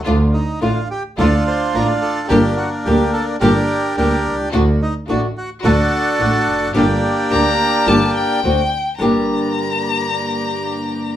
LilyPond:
<<
  \new Staff \with { instrumentName = "Violin" } { \time 4/4 \key g \minor \tempo 4 = 108 r1 | r1 | r1 | r4 bes''4 a''8 g''4. |
bes''1 | }
  \new Staff \with { instrumentName = "Bandoneon" } { \time 4/4 \key g \minor << { r8 ees'8 f'8 g'8 a'8 c''8 bes'8 a'8 | g'8 fis'8 g'8 a'8 bes'4 bes'8. r16 | r8 ees'8 d'8 fis'8 a'2 | g'2. r4 |
r1 | } \\ { r2 <d' f'>2 | <bes d'>2 <d' g'>4 <d' g'>4 | r2 <d' fis'>2 | <bes d'>2. r4 |
r1 | } >> }
  \new Staff \with { instrumentName = "String section" } { \time 4/4 \key g \minor <a d' f'>8 r8 <a d' f'>8 r8 <a d' f'>8 r8 <a d' f'>8 r8 | <bes d' g'>8 r8 <bes d' g'>8 r8 <bes d' g'>8 r8 <bes d' g'>8 r8 | <a d' fis'>8 r8 <a d' fis'>8 r8 <a d' fis'>8 r8 <a d' fis'>8 r8 | <bes d' g'>8 r8 <bes d' g'>8 r8 <bes d' g'>8 r8 <c' d' fis'>8 r8 |
<bes d' g'>1 | }
  \new Staff \with { instrumentName = "Nylon-string guitar" } { \time 4/4 \key g \minor <d a d' f'>8 r8 <d a d' f'>8 r8 <d a d' f'>8 r8 <d a d' f'>8 r8 | <d g bes d' g'>8 r8 <d g bes d' g'>8 r8 <d g bes d' g'>8 r8 <d g bes d' g'>8 r8 | <d a d' fis'>8 r8 <d a d' fis'>8 r8 <d a d' fis'>8 r8 <d a d' fis'>8 r8 | <d g bes d' g'>8 r8 <d g bes d' g'>8 r8 <d g bes d' g'>8 r8 <d a c' fis'>8 r8 |
<g, d g bes d' g'>1 | }
  \new Staff \with { instrumentName = "Double bass" } { \clef bass \time 4/4 \key g \minor d,8 r8 a,,8 r8 d,8 r8 a,,8 r8 | g,,8 r8 d,8 r8 g,,8 r8 d,8 c,8 | d,8 r8 a,,8 r8 d,8 r8 a,,8 f,,8 | g,,8 r8 d,8 r8 g,,8 r8 d,8 r8 |
g,,8 r2. r8 | }
>>